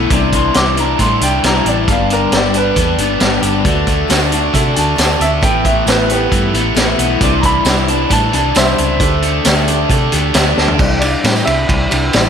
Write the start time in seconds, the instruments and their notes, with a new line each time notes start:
Already playing: steel-string acoustic guitar A2 E3 A3 B3 E4, overdriven electric guitar A3 B3
0.10 fingered electric bass C2, steel-string acoustic guitar C3 E3 G3 D4 E4, kick, closed hi-hat
0.32 overdriven electric guitar E3, grand piano C6, kick, closed hi-hat
0.54 fingered electric bass C2, steel-string acoustic guitar C3 E3 G3 D4 E4, grand piano D6, snare, closed hi-hat
0.77 steel-string acoustic guitar G3 D4 E4, grand piano A#5, closed hi-hat
0.99 fingered electric bass A2, steel-string acoustic guitar E3 G3 D4 E4, grand piano C6, kick, closed hi-hat
1.21 fingered electric bass C2, steel-string acoustic guitar G3 D4 E4, grand piano G5, closed hi-hat
1.43 fingered electric bass C2, steel-string acoustic guitar C3 E3 G3 D4 E4, grand piano A#5, snare, closed hi-hat
1.65 fingered electric bass A1, overdriven electric guitar D4, grand piano D5, closed hi-hat
1.88 fingered electric bass G1, steel-string acoustic guitar G2 D3 G3 B3 D4 G4, grand piano F5, kick, closed hi-hat
2.10 overdriven electric guitar D3, grand piano A#4, closed hi-hat
2.32 fingered electric bass G1, steel-string acoustic guitar G2 D3 G3 B3 D4 G4, grand piano D5, snare, closed hi-hat
2.54 steel-string acoustic guitar G3 B3 D4 G4, grand piano B4, closed hi-hat
2.76 fingered electric bass E2, steel-string acoustic guitar G3 B3 D4 G4, kick, closed hi-hat
2.98 fingered electric bass G1, steel-string acoustic guitar B3 D4 G4, closed hi-hat
3.03 steel-string acoustic guitar G3
3.20 fingered electric bass G1, steel-string acoustic guitar G2 D3 G3 B3 D4 G4, snare, closed hi-hat
3.42 fingered electric bass G1, overdriven electric guitar D4, closed hi-hat
3.64 fingered electric bass D2, steel-string acoustic guitar D3 A3 D4 F#4, upright piano F#4 A4 D5, kick, closed hi-hat
3.87 overdriven electric guitar A3, kick, closed hi-hat
4.08 fingered electric bass D2, steel-string acoustic guitar D3 A3 D4 F#4, upright piano F#4 A4 D5, snare, closed hi-hat, tambourine
4.31 steel-string acoustic guitar A3 D4 F#4, closed hi-hat
4.53 fingered electric bass C3, steel-string acoustic guitar D3 A3 D4, upright piano F#4 A4 E5, kick, closed hi-hat
4.57 steel-string acoustic guitar F#4
4.74 fingered electric bass D2, steel-string acoustic guitar A3 D4 F#4, grand piano G#5, closed hi-hat
4.79 grand piano A5
4.96 fingered electric bass D2, steel-string acoustic guitar D3 A3 D4 F#4, upright piano F#4 A4, snare, closed hi-hat, tambourine
5.00 upright piano D5
5.20 fingered electric bass D2, overdriven electric guitar D4, grand piano E5, closed hi-hat
5.41 fingered electric bass A1, steel-string acoustic guitar A2 E3 A3 B3 E4, upright piano E4 A4 B4, grand piano G5, kick, closed hi-hat
5.65 overdriven electric guitar E3, grand piano E5, kick, closed hi-hat
5.86 fingered electric bass A1, steel-string acoustic guitar A2 E3 A3 B3 E4, upright piano E4 A4 B4, grand piano B4, snare, closed hi-hat, tambourine
6.09 steel-string acoustic guitar A3 B3 E4, grand piano G4 B4, closed hi-hat
6.30 fingered electric bass G2, steel-string acoustic guitar E3 A3 B3 E4, upright piano E4 A4 B4, kick, closed hi-hat
6.53 fingered electric bass A1, steel-string acoustic guitar A3 B3 E4, closed hi-hat
6.75 fingered electric bass A1, steel-string acoustic guitar A2 E3 A3 B3 E4, upright piano E4 A4 B4, snare, closed hi-hat, tambourine
6.98 fingered electric bass B1, overdriven electric guitar B3, closed hi-hat
7.20 fingered electric bass C2, steel-string acoustic guitar C3 E3 G3 D4 E4, upright piano E4 C5 D5, kick, closed hi-hat
7.41 overdriven electric guitar E3, grand piano A#5, kick, closed hi-hat
7.45 grand piano B5
7.65 fingered electric bass C2, steel-string acoustic guitar C3 E3 G3 D4 E4, upright piano E4 C5 D5, snare, closed hi-hat, tambourine
7.88 steel-string acoustic guitar G3 D4 E4, closed hi-hat
8.09 fingered electric bass A2, steel-string acoustic guitar E3 G3 D4 E4, upright piano E4 C5 D5, grand piano A5, kick, closed hi-hat
8.32 fingered electric bass C2, steel-string acoustic guitar G3 D4 E4, grand piano A5, closed hi-hat
8.55 fingered electric bass C2, steel-string acoustic guitar C3 E3 G3 D4 E4, upright piano E4 C5 E5, grand piano C5 E5, snare, closed hi-hat, tambourine
8.77 fingered electric bass C#2, overdriven electric guitar D4, closed hi-hat
8.99 fingered electric bass D2, steel-string acoustic guitar D3 A3 D4 G4, upright piano G4 A4 D5, kick, closed hi-hat
9.22 overdriven electric guitar A3, closed hi-hat
9.43 fingered electric bass D2, steel-string acoustic guitar D3 A3, upright piano G4 A4 D5, snare, closed hi-hat, tambourine
9.47 steel-string acoustic guitar D4 G4
9.67 steel-string acoustic guitar A3 D4 G4, closed hi-hat
9.89 fingered electric bass C3, steel-string acoustic guitar D3 A3 D4, upright piano G4 A4 D5, kick, closed hi-hat
9.93 steel-string acoustic guitar G4
10.12 fingered electric bass D2, steel-string acoustic guitar A3 D4 G4, closed hi-hat
10.34 fingered electric bass D2, steel-string acoustic guitar D3 A3 D4 G4, upright piano G4 A4 E5, snare, closed hi-hat, tambourine
10.57 fingered electric bass D2, overdriven electric guitar D4, snare
10.68 floor tom
10.78 fingered electric bass C2, steel-string acoustic guitar C3 E3 G3 D4 G4, upright piano E4 C5 D5, kick, crash
10.99 steel-string acoustic guitar D4 G4, grand piano D5, ride, tambourine
11.04 steel-string acoustic guitar G3
11.23 fingered electric bass A2, steel-string acoustic guitar C3 E3 G3 D4 G4, upright piano E4 C5 D5, snare, ride, tambourine
11.36 tambourine
11.45 fingered electric bass C2, steel-string acoustic guitar G3 D4 G4, grand piano E5, ride
11.68 fingered electric bass C2, steel-string acoustic guitar E3 G3 D4 G4, upright piano E4 C5 D5, kick, ride
11.90 fingered electric bass C2, steel-string acoustic guitar G3 D4 G4, ride, tambourine
12.13 fingered electric bass A1, steel-string acoustic guitar C3 E3 G3 D4 G4, upright piano E4 C5 E5, snare, ride, tambourine